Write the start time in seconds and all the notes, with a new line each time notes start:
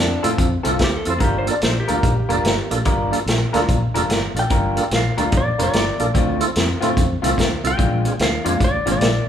Already playing: D4
0.00 F2
0.22 A2 D3 C4 E4 F4 A4, closed hi-hat
0.38 F2, kick, closed hi-hat
0.63 C2 D3 C4 E4 F4 A4, closed hi-hat
0.79 D2, kick, snare, closed hi-hat
0.84 G4
0.97 A4
1.05 F2 C4 E4 F4 A4, closed hi-hat
1.10 C5
1.19 G1 G3 D4 F4 A#4, kick, closed hi-hat
1.24 G4
1.38 C5
1.46 A#3 D4 F4 A4, closed hi-hat
1.51 D5
1.62 A#1 C5, snare, closed hi-hat
1.80 G4
1.88 D2 G3 A#3 D4 F4 A4 A#4, closed hi-hat
2.03 A#1, kick, closed hi-hat
2.29 F1 G3 A#3 D4 F4 A4 A#4, closed hi-hat
2.44 G1, snare, closed hi-hat
2.71 A#1 A#3 D4 F4 A4, closed hi-hat
2.85 G1 G3 D4 F4 A#4, kick, closed hi-hat
3.11 A#3 D4 F4 A4, closed hi-hat
3.26 A#1, snare, closed hi-hat
3.53 D2 G3 A#3 D4 F4 A4 A#4, snare, closed hi-hat
3.69 A#1, kick, closed hi-hat
3.94 F1 G3 A#3 D4 F4 A4 A#4, closed hi-hat
4.09 G1, snare, closed hi-hat
4.35 A#1 A#3 D4 F4 A4, closed hi-hat
4.39 G5
4.50 G1 G3 D4 F4 A#4, kick, closed hi-hat
4.76 A#3 D4 F4 A4, closed hi-hat
4.91 A#1, snare, closed hi-hat
4.96 F5
5.17 D2 G3 A#3 D4 F4 A4 A#4, closed hi-hat
5.32 A#1, kick, closed hi-hat
5.37 D5
5.58 F1 G3 A#3 D4 F4 A4 A#4, closed hi-hat
5.63 D5
5.73 G1, snare, closed hi-hat
5.99 A#1 A#3 D4 F4 A4, closed hi-hat
6.14 D2 D3 A3 C4 F4, kick, closed hi-hat
6.40 C4 E4 F4 A4, closed hi-hat
6.56 F2, snare, closed hi-hat
6.81 A2 D3 A3 C4 E4 F4 A4, closed hi-hat
6.97 F2, kick, closed hi-hat
7.22 C2 D3 A3 C4 E4 F4 A4, closed hi-hat
7.38 D2, kick, snare, closed hi-hat
7.64 C2 C4 E4 F4 A4 G5, closed hi-hat
7.77 A#1 A#2 G#3 D4 F4, kick, closed hi-hat
8.05 C4 D4 F4 G#4, closed hi-hat
8.19 D2 F5, snare, closed hi-hat
8.45 F2 A#2 G#3 C4 D4 F4 G#4, closed hi-hat
8.60 D2 D5, kick, closed hi-hat
8.86 G#1 A#2 G#3 C4 D4 F4 G#4, closed hi-hat
8.92 D5
9.01 A#1, snare, closed hi-hat